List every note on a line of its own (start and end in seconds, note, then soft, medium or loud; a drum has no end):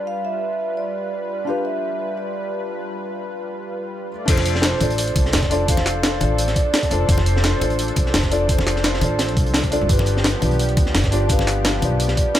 0.00 4.06 G3 medium
0.00 1.43 D4 medium
0.00 1.45 F4 medium
0.00 4.06 F4 medium
0.00 1.46 G4 medium
0.00 1.47 B4 medium
0.00 4.06 B4 medium
0.07 0.23 F5 loud
0.25 0.79 E5 loud
0.77 1.43 D5 medium
1.45 4.07 D4 medium
1.45 4.08 F4 medium
1.45 4.09 G4 medium
1.45 1.64 F5 medium
1.50 4.10 B4 medium
1.65 2.14 E5 medium
2.17 2.50 D5 medium
4.10 4.28 A3 medium
4.10 4.28 F4 medium
4.10 4.28 D5 medium
4.25 4.71 F1 loud
4.25 12.39 F3 medium
4.25 4.77 D4 loud
4.25 9.86 D4 medium
4.25 4.78 F4 medium
4.25 9.86 A4 medium
4.25 4.79 A4 medium
4.25 kick loud
4.25 closed hi-hat medium
4.25 crash loud
4.30 4.80 C5 loud
4.37 snare soft
4.37 muted conga medium
4.46 closed hi-hat medium
4.55 snare medium
4.62 4.96 C5 medium
4.62 snare loud
4.62 closed hi-hat medium
4.62 closed hi-hat loud
4.78 5.14 A1 medium
4.78 5.48 D4 medium
4.78 5.48 F4 medium
4.78 5.49 A4 medium
4.78 closed hi-hat medium
4.78 muted conga medium
4.78 high conga medium
4.83 5.50 D5 medium
4.90 closed hi-hat soft
4.98 5.71 D5 loud
4.98 closed hi-hat medium
5.07 closed hi-hat soft
5.16 5.35 C2 medium
5.16 kick loud
5.16 closed hi-hat medium
5.16 muted conga medium
5.25 snare soft
5.33 6.20 F1 medium
5.33 snare loud
5.33 closed hi-hat medium
5.33 closed hi-hat loud
5.43 kick medium
5.43 snare medium
5.43 closed hi-hat soft
5.49 5.63 D4 loud
5.49 5.64 F4 medium
5.49 5.64 A4 medium
5.49 5.65 D5 loud
5.49 closed hi-hat medium
5.66 6.17 D4 loud
5.66 6.19 F4 medium
5.66 6.19 A4 medium
5.66 6.41 F5 loud
5.66 kick loud
5.66 closed hi-hat medium
5.66 closed hi-hat loud
5.71 6.20 C5 loud
5.77 snare soft
5.77 muted conga medium
5.86 snare medium
5.86 closed hi-hat medium
6.03 snare loud
6.03 closed hi-hat loud
6.03 closed hi-hat medium
6.18 6.55 A1 medium
6.18 6.88 D4 medium
6.18 6.89 F4 medium
6.18 6.90 A4 medium
6.18 closed hi-hat medium
6.18 muted conga medium
6.18 high conga medium
6.24 6.90 D5 medium
6.38 6.55 D5 medium
6.38 closed hi-hat medium
6.48 snare soft
6.48 closed hi-hat soft
6.56 6.89 D5 loud
6.56 kick loud
6.56 closed hi-hat medium
6.73 snare loud
6.73 closed hi-hat medium
6.83 kick medium
6.83 closed hi-hat soft
6.90 7.07 F1 medium
6.90 7.04 D4 loud
6.90 7.04 F4 loud
6.90 7.05 A4 loud
6.90 7.93 C5 medium
6.90 7.05 D5 loud
6.90 closed hi-hat medium
7.06 7.52 F1 loud
7.06 7.57 D4 loud
7.06 7.59 F4 loud
7.06 7.60 A4 medium
7.06 kick loud
7.06 closed hi-hat medium
7.11 7.61 C5 loud
7.18 snare soft
7.18 muted conga medium
7.26 closed hi-hat medium
7.36 snare medium
7.44 snare loud
7.44 closed hi-hat medium
7.59 7.95 A1 medium
7.59 8.28 D4 medium
7.59 8.29 F4 medium
7.59 8.30 A4 medium
7.59 closed hi-hat medium
7.59 muted conga medium
7.59 high conga medium
7.64 8.31 D5 medium
7.70 closed hi-hat soft
7.79 closed hi-hat medium
7.88 closed hi-hat soft
7.96 8.15 C2 medium
7.96 kick loud
7.96 closed hi-hat medium
7.96 muted conga medium
8.06 snare soft
8.14 9.00 F1 medium
8.14 snare loud
8.14 closed hi-hat medium
8.23 kick medium
8.23 snare medium
8.23 closed hi-hat soft
8.30 8.44 D4 loud
8.30 8.44 F4 loud
8.30 8.45 A4 loud
8.30 8.45 D5 loud
8.30 closed hi-hat medium
8.46 8.98 D4 loud
8.46 8.99 F4 medium
8.46 9.00 A4 medium
8.46 kick loud
8.46 closed hi-hat medium
8.52 9.01 C5 loud
8.58 snare soft
8.58 muted conga medium
8.67 snare medium
8.67 closed hi-hat medium
8.76 snare soft
8.84 snare loud
8.84 closed hi-hat medium
8.94 snare soft
8.99 9.37 A1 medium
8.99 9.69 D4 medium
8.99 9.69 F4 medium
8.99 9.70 A4 medium
8.99 closed hi-hat medium
8.99 muted conga medium
8.99 high conga medium
9.04 9.71 D5 medium
9.19 snare loud
9.19 closed hi-hat medium
9.29 closed hi-hat soft
9.37 9.80 C2 medium
9.37 kick loud
9.37 closed hi-hat medium
9.46 closed hi-hat soft
9.54 snare loud
9.54 closed hi-hat medium
9.63 kick medium
9.63 closed hi-hat soft
9.71 9.84 D4 loud
9.71 9.85 F4 loud
9.71 9.85 A4 loud
9.71 9.86 D5 loud
9.71 closed hi-hat medium
9.81 9.89 C2 loud
9.87 10.32 G1 loud
9.87 12.39 B3 medium
9.87 10.38 D4 loud
9.87 10.40 F4 medium
9.87 12.39 G4 medium
9.87 10.40 G4 medium
9.87 kick loud
9.87 closed hi-hat medium
9.92 10.41 B4 loud
9.99 snare soft
9.99 muted conga medium
10.06 closed hi-hat medium
10.17 snare medium
10.24 10.57 B4 medium
10.24 snare loud
10.24 closed hi-hat medium
10.24 closed hi-hat loud
10.39 10.76 B1 medium
10.39 11.09 D4 medium
10.39 11.10 F4 medium
10.39 11.11 G4 medium
10.39 closed hi-hat medium
10.39 muted conga medium
10.39 high conga medium
10.45 11.11 D5 medium
10.51 closed hi-hat soft
10.59 11.26 D5 loud
10.59 closed hi-hat medium
10.69 closed hi-hat soft
10.77 10.96 D2 medium
10.77 kick loud
10.77 closed hi-hat medium
10.77 muted conga medium
10.86 snare soft
10.95 11.81 G1 medium
10.95 snare loud
10.95 closed hi-hat medium
11.04 kick medium
11.04 snare medium
11.04 closed hi-hat soft
11.11 11.25 D4 loud
11.11 11.25 F4 medium
11.11 11.26 G4 loud
11.11 11.26 D5 loud
11.11 closed hi-hat medium
11.27 11.78 D4 loud
11.27 11.80 F4 medium
11.27 11.81 G4 medium
11.27 12.02 F5 loud
11.27 kick loud
11.27 closed hi-hat medium
11.32 11.82 B4 loud
11.39 snare soft
11.39 muted conga medium
11.47 snare medium
11.47 closed hi-hat medium
11.65 snare loud
11.65 closed hi-hat medium
11.65 closed hi-hat loud
11.80 12.16 B1 medium
11.80 12.39 D4 medium
11.80 12.39 F4 medium
11.80 12.39 G4 medium
11.80 closed hi-hat medium
11.80 muted conga medium
11.80 high conga medium
11.85 12.39 D5 medium
12.00 12.16 D5 loud
12.00 closed hi-hat medium
12.08 snare soft
12.08 closed hi-hat soft
12.17 12.39 D5 loud
12.17 kick loud
12.17 closed hi-hat medium
12.35 snare loud
12.35 closed hi-hat medium